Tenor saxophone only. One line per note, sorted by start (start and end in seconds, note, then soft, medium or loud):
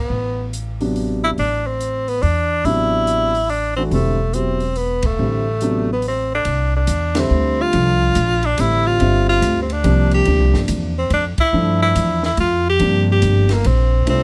0.00 0.51 B3 medium
1.24 1.30 E4 medium
1.39 1.68 D4 medium
1.67 2.10 C4 medium
2.09 2.24 B3 medium
2.22 2.67 D4 medium
2.65 3.51 E4 loud
3.50 3.76 D4 medium
3.76 3.83 C4 medium
3.94 4.36 A3 medium
4.34 4.78 C4 medium
4.77 5.07 B3 medium
5.06 5.90 A3 medium
5.93 6.05 B3 medium
6.08 6.32 C4 medium
6.35 6.72 D4 medium
6.76 7.22 D4 medium
7.20 7.63 C4 medium
7.62 8.47 F4 loud
8.45 8.62 D4 medium
8.60 8.88 E4 medium
8.87 9.28 F4 loud
9.29 9.59 F4 loud
9.62 9.74 C4 medium
9.73 10.13 D4 medium
10.14 10.62 G4 medium
10.98 11.11 C4 medium
11.13 11.25 D4 medium
11.40 11.79 E4 medium
11.82 12.21 E4 medium
12.25 12.38 E4 medium
12.40 12.64 F4 loud
12.69 13.07 G4 loud
13.12 13.55 G4 medium
13.53 13.68 A#3 medium
13.67 14.08 C4 medium
14.09 14.23 C4 medium